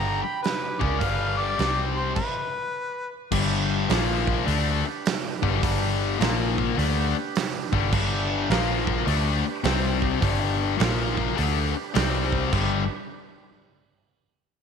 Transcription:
Already playing: G1 G2 D3 G3 D4 G4 B4 G5 A#5
0.22 G5 B5
0.43 G4 B4, snare, open hi-hat
0.79 C#2 C#3 G#3 C#4 A#4 D5, kick
1.00 G1 G2 D3 G3 B4 F5, kick, open hi-hat
1.37 G4 D5
1.58 C2 C3 G3 C4 G4 C5, snare, open hi-hat
1.96 G4 C5
2.16 B4, kick, crash
3.31 G1 G2 D3 G3 D4 G4 B4, kick, crash
3.88 A#1 A#2 F3 A#3 F4 A#4, snare, open hi-hat
4.27 kick
4.44 D2 D3 A3 D4 G4 B4, open hi-hat
5.06 snare, open hi-hat
5.42 G1 G2 D3 G3, kick
5.63 G1 G2 D3 G3, kick, open hi-hat
6.19 A#1 A#2 F3 A#3 F4 A#4, snare, open hi-hat
6.58 kick
6.77 D2 D3 A3 D4 G4 B4, open hi-hat
7.36 snare, open hi-hat
7.72 G1 G2 D3 G3, kick
7.93 G1 G2 D3 G3, kick, crash
8.50 A#1 A#2 F3 A#3 F4 A#4, snare, open hi-hat
8.87 kick
9.06 D2 D3 A3 D4 G4 B4, open hi-hat
9.62 C2 C3 G3 C4 G4 C5, snare, open hi-hat
10.02 kick
10.20 G1 G2 D3 G3 D4 G4 B4, kick, open hi-hat
10.77 A#1 A#2 F3 A#3 F4 A#4, snare, open hi-hat
11.17 kick
11.35 D3 A3 D4 G4 B4, open hi-hat
11.39 D2
11.94 C2 C3 G3 C4 G4 C5, snare, open hi-hat
12.32 kick
12.51 G1 G2 D3 G3 D4 G4 B4, kick, crash

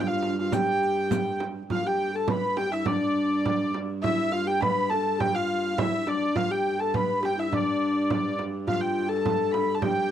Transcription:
Already playing: G2
0.00 G5
0.07 F4 F5
0.23 frame drum
0.39 F4 F5
0.52 G4 G5, riq, frame drum
0.82 riq, frame drum
1.11 riq, frame drum
1.40 frame drum
1.70 G2 F4 F5, frame drum
1.86 G4 G5
1.99 frame drum
2.14 A4 A5
2.28 B4 B5, frame drum
2.57 G4 G5, frame drum
2.72 E4 E5
2.86 D4 D5, frame drum
3.16 frame drum
3.46 frame drum
3.74 frame drum
4.03 E4 E5, frame drum
4.32 F4 F5
4.47 G4 G5
4.61 B4 B5, frame drum
4.90 A4 A5, frame drum
5.19 G4 G5, frame drum
5.34 F4 F5
5.78 E4 E5, frame drum
6.07 D4 D5, frame drum
6.35 G2 F4 F5, frame drum
6.51 G4 G5
6.66 frame drum
6.80 A4 A5
6.94 B4 B5, frame drum
7.22 G4 G5, frame drum
7.37 E4 E5
7.51 D4 D5, frame drum
7.82 frame drum
8.10 frame drum
8.39 frame drum
8.67 F4 F5, frame drum
8.81 G5
8.97 frame drum
9.09 A4 A5
9.26 frame drum
9.51 B5, frame drum
9.74 A5
9.81 G4 G5, frame drum

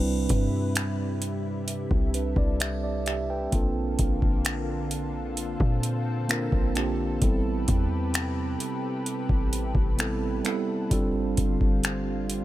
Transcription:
Already playing: C2 C3 G3 C4 D4 E4 B4
0.29 G2, kick, closed hi-hat
0.76 finger snap, closed hi-hat
1.22 closed hi-hat
1.68 A4, closed hi-hat
1.91 C2, kick
2.14 D4 B4, closed hi-hat
2.36 C2 D5, kick
2.60 G4 E5, finger snap, closed hi-hat
2.84 D5
3.06 G4 E5, finger snap, closed hi-hat
3.30 B4 G5
3.51 A#1 D3 A#3 C4 D4 F4 A4, kick, closed hi-hat
3.99 A#1, kick, closed hi-hat
4.22 kick
4.45 finger snap, closed hi-hat
4.91 closed hi-hat
5.37 C4, closed hi-hat
5.60 A#2, kick
5.83 closed hi-hat
6.28 A#3 C4 D4 F4 A#4, finger snap, closed hi-hat
6.52 A#1, kick
6.75 A#3 C4 D4 F4 G4, finger snap, closed hi-hat
7.21 A1 C3 G3 B3 C4 E4 G4 A4 B4, kick, closed hi-hat
7.68 E2, kick, closed hi-hat
8.14 finger snap, closed hi-hat
8.60 closed hi-hat
9.06 closed hi-hat
9.29 A1, kick
9.53 closed hi-hat
9.75 A1, kick
9.97 G3 B3 C4 E4 A4, finger snap, closed hi-hat
10.44 G3 B3 C4 E4 A4, finger snap, closed hi-hat
10.90 G1 D3 G3 C4 D4 F4 A4, kick, closed hi-hat
11.37 G1, kick, closed hi-hat
11.61 kick
11.84 finger snap, closed hi-hat
12.30 closed hi-hat

